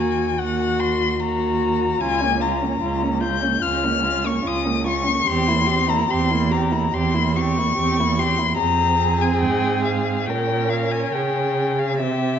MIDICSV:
0, 0, Header, 1, 5, 480
1, 0, Start_track
1, 0, Tempo, 804290
1, 1204, Time_signature, 4, 2, 24, 8
1, 2163, Tempo, 825309
1, 3123, Tempo, 829876
1, 5523, Tempo, 862069
1, 7175, End_track
2, 0, Start_track
2, 0, Title_t, "Violin"
2, 0, Program_c, 0, 40
2, 0, Note_on_c, 0, 80, 81
2, 235, Note_on_c, 0, 78, 82
2, 244, Note_off_c, 0, 80, 0
2, 476, Note_on_c, 0, 84, 88
2, 485, Note_off_c, 0, 78, 0
2, 719, Note_on_c, 0, 82, 86
2, 728, Note_off_c, 0, 84, 0
2, 1195, Note_on_c, 0, 80, 112
2, 1204, Note_off_c, 0, 82, 0
2, 1442, Note_on_c, 0, 82, 85
2, 1451, Note_off_c, 0, 80, 0
2, 1919, Note_off_c, 0, 82, 0
2, 1931, Note_on_c, 0, 91, 90
2, 2162, Note_on_c, 0, 89, 86
2, 2171, Note_off_c, 0, 91, 0
2, 2536, Note_on_c, 0, 85, 78
2, 2545, Note_off_c, 0, 89, 0
2, 2656, Note_on_c, 0, 87, 84
2, 2664, Note_off_c, 0, 85, 0
2, 2883, Note_off_c, 0, 87, 0
2, 2887, Note_on_c, 0, 85, 99
2, 3124, Note_on_c, 0, 84, 112
2, 3132, Note_off_c, 0, 85, 0
2, 3481, Note_on_c, 0, 82, 94
2, 3489, Note_off_c, 0, 84, 0
2, 3604, Note_on_c, 0, 84, 102
2, 3612, Note_off_c, 0, 82, 0
2, 3843, Note_on_c, 0, 82, 85
2, 3852, Note_off_c, 0, 84, 0
2, 4083, Note_on_c, 0, 84, 100
2, 4092, Note_off_c, 0, 82, 0
2, 4327, Note_on_c, 0, 85, 106
2, 4336, Note_off_c, 0, 84, 0
2, 4811, Note_on_c, 0, 84, 105
2, 4819, Note_off_c, 0, 85, 0
2, 5029, Note_off_c, 0, 84, 0
2, 5033, Note_on_c, 0, 82, 116
2, 5401, Note_on_c, 0, 80, 85
2, 5410, Note_off_c, 0, 82, 0
2, 5513, Note_on_c, 0, 79, 89
2, 5521, Note_off_c, 0, 80, 0
2, 5753, Note_off_c, 0, 79, 0
2, 5758, Note_on_c, 0, 77, 72
2, 5989, Note_on_c, 0, 79, 78
2, 5998, Note_off_c, 0, 77, 0
2, 6229, Note_on_c, 0, 77, 83
2, 6238, Note_off_c, 0, 79, 0
2, 6354, Note_on_c, 0, 80, 75
2, 6363, Note_off_c, 0, 77, 0
2, 6467, Note_on_c, 0, 79, 70
2, 6475, Note_off_c, 0, 80, 0
2, 6840, Note_on_c, 0, 77, 77
2, 6849, Note_off_c, 0, 79, 0
2, 6955, Note_off_c, 0, 77, 0
2, 6958, Note_on_c, 0, 76, 88
2, 7175, Note_off_c, 0, 76, 0
2, 7175, End_track
3, 0, Start_track
3, 0, Title_t, "Violin"
3, 0, Program_c, 1, 40
3, 0, Note_on_c, 1, 66, 57
3, 232, Note_off_c, 1, 66, 0
3, 239, Note_on_c, 1, 66, 58
3, 714, Note_off_c, 1, 66, 0
3, 734, Note_on_c, 1, 66, 59
3, 1197, Note_off_c, 1, 66, 0
3, 1200, Note_on_c, 1, 65, 65
3, 1318, Note_on_c, 1, 61, 58
3, 1327, Note_off_c, 1, 65, 0
3, 1433, Note_on_c, 1, 65, 56
3, 1442, Note_off_c, 1, 61, 0
3, 1561, Note_on_c, 1, 61, 62
3, 1570, Note_off_c, 1, 65, 0
3, 1676, Note_off_c, 1, 61, 0
3, 1680, Note_on_c, 1, 65, 56
3, 1806, Note_on_c, 1, 61, 57
3, 1815, Note_off_c, 1, 65, 0
3, 1911, Note_on_c, 1, 65, 59
3, 1920, Note_off_c, 1, 61, 0
3, 2043, Note_on_c, 1, 61, 60
3, 2052, Note_off_c, 1, 65, 0
3, 2160, Note_off_c, 1, 61, 0
3, 2163, Note_on_c, 1, 65, 65
3, 2293, Note_on_c, 1, 61, 53
3, 2302, Note_off_c, 1, 65, 0
3, 2402, Note_on_c, 1, 65, 56
3, 2411, Note_off_c, 1, 61, 0
3, 2524, Note_on_c, 1, 61, 54
3, 2532, Note_off_c, 1, 65, 0
3, 2637, Note_off_c, 1, 61, 0
3, 2641, Note_on_c, 1, 65, 61
3, 2759, Note_on_c, 1, 61, 55
3, 2768, Note_off_c, 1, 65, 0
3, 2873, Note_on_c, 1, 65, 59
3, 2882, Note_off_c, 1, 61, 0
3, 2986, Note_on_c, 1, 61, 54
3, 2995, Note_off_c, 1, 65, 0
3, 3114, Note_off_c, 1, 61, 0
3, 3118, Note_on_c, 1, 67, 70
3, 3241, Note_on_c, 1, 64, 60
3, 3249, Note_off_c, 1, 67, 0
3, 3349, Note_on_c, 1, 67, 64
3, 3358, Note_off_c, 1, 64, 0
3, 3470, Note_on_c, 1, 64, 66
3, 3479, Note_off_c, 1, 67, 0
3, 3598, Note_off_c, 1, 64, 0
3, 3603, Note_on_c, 1, 67, 58
3, 3722, Note_on_c, 1, 64, 59
3, 3730, Note_off_c, 1, 67, 0
3, 3835, Note_on_c, 1, 67, 67
3, 3844, Note_off_c, 1, 64, 0
3, 3955, Note_on_c, 1, 64, 66
3, 3964, Note_off_c, 1, 67, 0
3, 4080, Note_off_c, 1, 64, 0
3, 4083, Note_on_c, 1, 67, 61
3, 4204, Note_on_c, 1, 64, 57
3, 4213, Note_off_c, 1, 67, 0
3, 4334, Note_on_c, 1, 67, 54
3, 4343, Note_off_c, 1, 64, 0
3, 4456, Note_on_c, 1, 64, 51
3, 4465, Note_off_c, 1, 67, 0
3, 4564, Note_off_c, 1, 64, 0
3, 4568, Note_on_c, 1, 67, 61
3, 4698, Note_on_c, 1, 64, 59
3, 4707, Note_off_c, 1, 67, 0
3, 4809, Note_on_c, 1, 67, 61
3, 4817, Note_off_c, 1, 64, 0
3, 4923, Note_on_c, 1, 64, 54
3, 4932, Note_off_c, 1, 67, 0
3, 5041, Note_off_c, 1, 64, 0
3, 5044, Note_on_c, 1, 68, 79
3, 6008, Note_on_c, 1, 70, 71
3, 6017, Note_off_c, 1, 68, 0
3, 6483, Note_on_c, 1, 68, 61
3, 6491, Note_off_c, 1, 70, 0
3, 6963, Note_off_c, 1, 68, 0
3, 6973, Note_on_c, 1, 67, 70
3, 7175, Note_off_c, 1, 67, 0
3, 7175, End_track
4, 0, Start_track
4, 0, Title_t, "Viola"
4, 0, Program_c, 2, 41
4, 0, Note_on_c, 2, 58, 63
4, 231, Note_off_c, 2, 58, 0
4, 243, Note_on_c, 2, 58, 62
4, 712, Note_off_c, 2, 58, 0
4, 716, Note_on_c, 2, 58, 64
4, 1190, Note_off_c, 2, 58, 0
4, 1201, Note_on_c, 2, 61, 64
4, 1330, Note_on_c, 2, 58, 54
4, 1339, Note_off_c, 2, 61, 0
4, 1447, Note_on_c, 2, 61, 54
4, 1456, Note_off_c, 2, 58, 0
4, 1568, Note_on_c, 2, 58, 57
4, 1577, Note_off_c, 2, 61, 0
4, 1682, Note_off_c, 2, 58, 0
4, 1686, Note_on_c, 2, 61, 56
4, 1804, Note_on_c, 2, 58, 60
4, 1813, Note_off_c, 2, 61, 0
4, 1927, Note_on_c, 2, 61, 57
4, 1936, Note_off_c, 2, 58, 0
4, 2042, Note_on_c, 2, 58, 58
4, 2051, Note_off_c, 2, 61, 0
4, 2161, Note_off_c, 2, 58, 0
4, 2164, Note_on_c, 2, 61, 63
4, 2285, Note_on_c, 2, 58, 53
4, 2294, Note_off_c, 2, 61, 0
4, 2403, Note_on_c, 2, 61, 63
4, 2412, Note_off_c, 2, 58, 0
4, 2528, Note_on_c, 2, 58, 60
4, 2537, Note_off_c, 2, 61, 0
4, 2639, Note_off_c, 2, 58, 0
4, 2643, Note_on_c, 2, 61, 66
4, 2765, Note_on_c, 2, 58, 64
4, 2774, Note_off_c, 2, 61, 0
4, 2886, Note_on_c, 2, 61, 55
4, 2895, Note_off_c, 2, 58, 0
4, 3004, Note_on_c, 2, 58, 54
4, 3013, Note_off_c, 2, 61, 0
4, 3120, Note_off_c, 2, 58, 0
4, 3123, Note_on_c, 2, 60, 77
4, 3241, Note_on_c, 2, 58, 61
4, 3249, Note_off_c, 2, 60, 0
4, 3362, Note_on_c, 2, 60, 61
4, 3370, Note_off_c, 2, 58, 0
4, 3482, Note_on_c, 2, 58, 61
4, 3491, Note_off_c, 2, 60, 0
4, 3593, Note_off_c, 2, 58, 0
4, 3596, Note_on_c, 2, 60, 70
4, 3723, Note_on_c, 2, 58, 61
4, 3732, Note_off_c, 2, 60, 0
4, 3838, Note_on_c, 2, 60, 64
4, 3846, Note_off_c, 2, 58, 0
4, 3954, Note_on_c, 2, 58, 58
4, 3963, Note_off_c, 2, 60, 0
4, 4079, Note_off_c, 2, 58, 0
4, 4082, Note_on_c, 2, 60, 63
4, 4194, Note_on_c, 2, 58, 59
4, 4203, Note_off_c, 2, 60, 0
4, 4318, Note_on_c, 2, 60, 67
4, 4327, Note_off_c, 2, 58, 0
4, 4448, Note_on_c, 2, 58, 63
4, 4457, Note_off_c, 2, 60, 0
4, 4557, Note_off_c, 2, 58, 0
4, 4561, Note_on_c, 2, 60, 70
4, 4684, Note_on_c, 2, 58, 62
4, 4693, Note_off_c, 2, 60, 0
4, 4805, Note_on_c, 2, 60, 58
4, 4814, Note_off_c, 2, 58, 0
4, 4922, Note_on_c, 2, 58, 54
4, 4931, Note_off_c, 2, 60, 0
4, 5031, Note_off_c, 2, 58, 0
4, 5035, Note_on_c, 2, 60, 81
4, 5991, Note_on_c, 2, 61, 75
4, 5999, Note_off_c, 2, 60, 0
4, 6953, Note_off_c, 2, 61, 0
4, 6956, Note_on_c, 2, 60, 69
4, 7175, Note_off_c, 2, 60, 0
4, 7175, End_track
5, 0, Start_track
5, 0, Title_t, "Cello"
5, 0, Program_c, 3, 42
5, 0, Note_on_c, 3, 39, 57
5, 1179, Note_off_c, 3, 39, 0
5, 1205, Note_on_c, 3, 37, 80
5, 1627, Note_off_c, 3, 37, 0
5, 1682, Note_on_c, 3, 37, 73
5, 2105, Note_off_c, 3, 37, 0
5, 2167, Note_on_c, 3, 37, 69
5, 2590, Note_off_c, 3, 37, 0
5, 2645, Note_on_c, 3, 37, 69
5, 3067, Note_off_c, 3, 37, 0
5, 3120, Note_on_c, 3, 40, 77
5, 3545, Note_off_c, 3, 40, 0
5, 3597, Note_on_c, 3, 40, 83
5, 4027, Note_off_c, 3, 40, 0
5, 4083, Note_on_c, 3, 40, 80
5, 4511, Note_off_c, 3, 40, 0
5, 4561, Note_on_c, 3, 40, 73
5, 4981, Note_off_c, 3, 40, 0
5, 5037, Note_on_c, 3, 41, 72
5, 5516, Note_on_c, 3, 44, 66
5, 5525, Note_off_c, 3, 41, 0
5, 5994, Note_on_c, 3, 46, 67
5, 6002, Note_off_c, 3, 44, 0
5, 6465, Note_off_c, 3, 46, 0
5, 6469, Note_on_c, 3, 49, 60
5, 6957, Note_on_c, 3, 48, 68
5, 6965, Note_off_c, 3, 49, 0
5, 7175, Note_off_c, 3, 48, 0
5, 7175, End_track
0, 0, End_of_file